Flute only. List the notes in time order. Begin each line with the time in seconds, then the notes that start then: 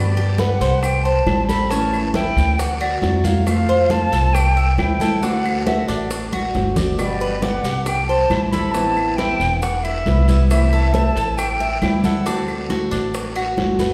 Already playing: D5
0.39 F#5
0.83 G5
1.03 A5
1.48 B5
1.70 A5
2.14 G5
2.59 F#5
2.81 D5
3.47 F5
3.90 A5
4.34 G5
4.77 G5
5.21 F#5
5.65 E5
5.87 D5
7.00 D5
7.43 F#5
7.86 G5
8.07 A5
8.50 B5
8.72 A5
9.17 G5
9.61 F#5
9.83 E5
10.51 E5
10.93 A5
11.37 G5
11.81 G5
12.04 F#5